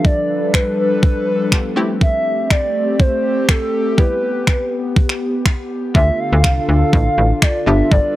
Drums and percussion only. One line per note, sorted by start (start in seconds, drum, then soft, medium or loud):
0.05 kick loud
0.54 finger snap loud
0.54 kick loud
1.03 kick loud
1.52 finger snap loud
1.52 kick loud
2.01 kick loud
2.50 finger snap loud
2.50 kick loud
3.00 kick loud
3.49 finger snap loud
3.49 kick loud
3.98 kick loud
4.47 finger snap loud
4.47 kick loud
4.96 kick loud
5.09 finger snap medium
5.46 finger snap loud
5.46 kick loud
5.95 kick loud
6.44 finger snap loud
6.44 kick loud
6.93 kick loud
7.42 finger snap loud
7.42 kick loud
7.92 kick loud